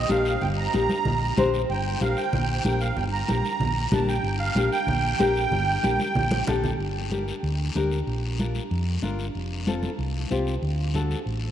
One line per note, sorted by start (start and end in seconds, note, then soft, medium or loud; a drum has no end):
0.09 0.35 A#1 loud
0.09 0.32 D4 medium
0.09 0.32 G4 medium
0.09 0.32 A#4 medium
0.09 0.43 F5 loud
0.09 high conga medium
0.09 short guiro medium
0.25 short guiro medium
0.41 0.67 G1 loud
0.41 0.49 G5 medium
0.41 low conga medium
0.41 long guiro medium
0.58 1.49 A#5 loud
0.73 0.86 A#1 loud
0.73 0.96 D4 medium
0.73 0.96 G4 medium
0.73 0.96 A#4 medium
0.73 high conga medium
0.73 short guiro medium
0.89 high conga medium
0.89 short guiro medium
1.05 1.31 A#1 medium
1.05 low conga medium
1.05 long guiro medium
1.37 1.63 A#1 loud
1.37 1.59 D4 medium
1.37 1.60 G4 medium
1.37 1.60 C5 loud
1.37 high conga medium
1.37 low conga medium
1.37 short guiro medium
1.54 short guiro medium
1.69 1.95 G1 loud
1.69 1.99 G5 medium
1.69 long guiro medium
2.01 2.14 A#1 medium
2.01 2.23 D4 medium
2.01 2.24 G4 medium
2.01 2.24 A#4 medium
2.01 2.18 F5 medium
2.01 high conga medium
2.01 short guiro medium
2.17 2.63 G5 loud
2.17 short guiro medium
2.33 2.58 A#1 loud
2.33 low conga medium
2.33 long guiro medium
2.64 2.90 A#1 loud
2.64 2.87 D4 medium
2.64 2.87 G4 medium
2.64 2.87 A#4 medium
2.64 2.81 G5 medium
2.64 high conga medium
2.64 short guiro medium
2.81 2.95 F5 medium
2.81 short guiro medium
2.96 3.22 G1 loud
2.96 3.04 G5 medium
2.96 low conga medium
2.96 long guiro medium
3.12 3.88 A#5 loud
3.28 3.41 A#1 loud
3.28 3.51 D4 medium
3.28 3.51 G4 medium
3.28 3.51 A#4 medium
3.28 high conga medium
3.28 short guiro medium
3.45 short guiro medium
3.60 3.85 A#1 loud
3.60 low conga medium
3.60 long guiro medium
3.92 4.17 A#1 loud
3.92 4.14 D4 medium
3.92 4.14 G4 medium
3.92 4.15 A#4 medium
3.92 4.09 A5 medium
3.92 high conga loud
3.92 low conga medium
3.92 short guiro medium
4.08 4.38 G5 medium
4.08 short guiro medium
4.23 4.49 G1 loud
4.23 long guiro medium
4.39 4.69 F5 loud
4.55 4.68 A#1 loud
4.55 4.78 D4 medium
4.55 4.78 G4 medium
4.55 4.78 A#4 medium
4.55 high conga medium
4.55 short guiro medium
4.72 6.43 G5 loud
4.72 short guiro medium
4.87 5.13 A#1 loud
4.87 low conga medium
4.87 long guiro medium
5.19 5.45 A#1 medium
5.19 5.42 D4 medium
5.19 5.42 G4 medium
5.19 5.42 A#4 loud
5.19 high conga medium
5.19 short guiro medium
5.36 short guiro medium
5.51 5.77 G1 loud
5.51 low conga medium
5.51 long guiro medium
5.83 5.96 A#1 medium
5.83 6.05 D4 medium
5.83 6.06 G4 medium
5.83 6.06 A#4 medium
5.83 high conga medium
5.83 short guiro medium
6.00 high conga medium
6.00 short guiro medium
6.15 6.41 A#1 loud
6.15 low conga medium
6.15 long guiro medium
6.31 high conga loud
6.47 6.73 A#1 loud
6.47 6.69 D4 loud
6.47 6.70 G4 medium
6.47 6.70 A4 loud
6.47 low conga medium
6.47 short guiro medium
6.64 low conga medium
6.64 short guiro medium
6.79 7.30 G1 medium
6.79 long guiro medium
7.11 7.33 D4 medium
7.11 7.33 G4 medium
7.11 7.34 A#4 medium
7.11 high conga medium
7.11 short guiro medium
7.28 short guiro medium
7.43 7.69 D2 medium
7.43 long guiro medium
7.75 8.01 D2 medium
7.75 7.97 D4 medium
7.75 7.98 G4 medium
7.75 7.98 A#4 medium
7.75 high conga medium
7.75 short guiro medium
7.92 short guiro medium
8.07 8.58 A#1 medium
8.07 long guiro medium
8.39 8.61 D4 medium
8.39 8.62 F4 medium
8.39 8.62 A#4 medium
8.39 high conga medium
8.39 short guiro medium
8.55 short guiro medium
8.71 8.96 F2 medium
8.71 long guiro medium
9.02 9.28 G1 medium
9.02 9.25 D4 medium
9.02 9.25 F4 medium
9.02 9.25 A#4 medium
9.02 high conga medium
9.02 short guiro medium
9.19 short guiro medium
9.35 9.86 F1 medium
9.35 long guiro medium
9.67 9.89 C4 medium
9.67 9.89 F4 medium
9.67 9.89 A4 medium
9.67 high conga medium
9.67 short guiro medium
9.83 high conga medium
9.83 short guiro medium
9.98 10.24 C2 medium
9.98 long guiro medium
10.30 10.56 C2 medium
10.30 10.53 C4 medium
10.30 10.53 F4 medium
10.30 10.53 G4 medium
10.30 high conga medium
10.30 short guiro medium
10.47 short guiro medium
10.62 11.14 D2 medium
10.62 long guiro medium
10.94 11.17 D4 medium
10.94 11.17 F#4 medium
10.94 11.17 A4 medium
10.94 high conga medium
10.94 short guiro medium
11.11 short guiro medium
11.26 11.51 A1 medium
11.26 long guiro medium